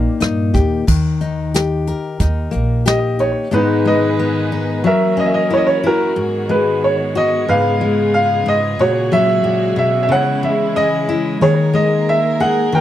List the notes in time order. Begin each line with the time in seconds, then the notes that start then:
Already playing: A#2 D#3 A#3 D#4 G4
0.20 G2 D#4, cross-stick, closed hi-hat
0.54 D#2 G4, kick, closed hi-hat
0.87 D#2 D#3, kick, crash
1.21 D#4, closed hi-hat
1.54 G4, snare, closed hi-hat
1.87 A#4, closed hi-hat
2.20 D#2 D#4, kick, closed hi-hat
2.51 A#1 A#3, closed hi-hat
2.86 G4 D#5, snare, closed hi-hat
3.19 D#4 C#5, closed hi-hat
3.51 G#2 D#3 G#3 B3 D#4 G#4 B4
3.85 G#3 B4 D#5
4.19 B3
4.52 D#4
4.84 E3 F#3 A#3 C#4 F#4 A#4 E5
5.17 C#4 D#5
5.26 E5
5.34 D#5
5.50 E4 C#5
5.57 D#5
5.67 C#5
5.84 E4 F#4 A#4
6.16 G#2 D#3 G#3 B3 G#4
6.49 G#3 B4
6.84 C#5
7.15 F#4 D#5
7.48 G#2 C#3 F4 B4 F5
7.81 G#3
8.14 F5
8.46 G#2 D#5
8.79 A#2 C#3 G#3 F#4 C#5
9.12 F#3 E5
9.44 A#2
9.76 B2 E5
10.03 E5
10.09 C#3 E3 E4 C#5 F#5
10.43 G#3 E5
10.76 C#4 D#5
11.09 E4
11.40 D#3 A#3 G#4 A#4 C#5
11.74 G#3 D#5
12.09 E5
12.40 G#4 F#5
12.72 D#3 G3 G4 A#4 G5